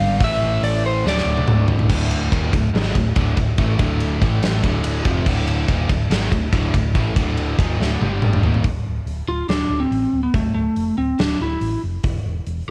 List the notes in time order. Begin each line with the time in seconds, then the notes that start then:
Already playing: G2 D3 G3 D4 A4 F5
0.00 G#1
0.20 A1 A2 E3 A3 E4 B4, kick, open hi-hat
0.24 E5
0.41 A1
0.62 A1 D5, open hi-hat
0.86 C5
1.04 D1 D2 A2 D3 D4 A4 E5, snare
1.08 D5
1.18 snare
1.25 D1
1.37 high tom
1.48 D1, mid tom
1.68 D1, floor tom
1.79 floor tom
1.88 D1 D2 A2 D3 D4 A4 E5, kick, crash
2.11 ride
2.32 D#1 D#2 A#2 D#3, kick, ride
2.53 D1 D2 A2, kick, ride
2.74 G#1 G#2 D#3 G#3, snare, ride
2.95 D1 D2 A2, kick, ride
3.16 D1 D2 A2 D3, kick, ride
3.37 D1 D2 A2, kick, ride
3.58 A1 A2 E3 A3, kick, ride
3.79 D1 D2 A2 D3, kick, ride
4.00 ride
4.20 A1 A2 E3 A3 E4 B4, kick, ride
4.43 snare, ride
4.63 D1 D2 A2 D3 D4 A4 E5, kick, ride
4.84 ride
5.05 F1 F2 C3 F3, kick, ride
5.26 D1 D2 A2 D3, kick, crash
5.48 ride
5.68 D#1 D#2 A#2 D#3, kick, ride
5.89 D1 D2 A2, kick, ride
6.10 G#1 G#2 D#3 G#3, snare, ride
6.32 D1 D2 A2, kick, ride
6.53 D1 D2 A2 D3, kick, ride
6.74 D1 D2 A2, kick, ride
6.94 A1 A2 E3 A3, kick, ride
7.15 D1 D2 A2 D3, kick, ride
7.37 ride
7.58 D#1 D#2 A#2 D#3, kick, ride
7.79 D1 D2 A2 D3, snare
8.01 G1 G2 D3 G3, high tom
8.22 mid tom
8.33 mid tom
8.43 D#1 D#2 A#2 D#3 E5, floor tom
8.54 floor tom
8.64 D1, kick, open hi-hat
8.85 D1
9.06 D1, open hi-hat
9.28 D1 F4
9.48 D1 D4, snare, open hi-hat
9.69 D1
9.80 C4
9.91 A1, open hi-hat
10.13 D1
10.23 B3
10.34 D1 A3, kick, open hi-hat
10.54 D1 A3
10.76 F1, open hi-hat
10.98 D1 C4
11.19 D1 D4, snare, open hi-hat
11.40 D1 E4
11.61 A1, open hi-hat
11.83 F1
12.04 E1, kick, open hi-hat
12.25 E1
12.47 E1, open hi-hat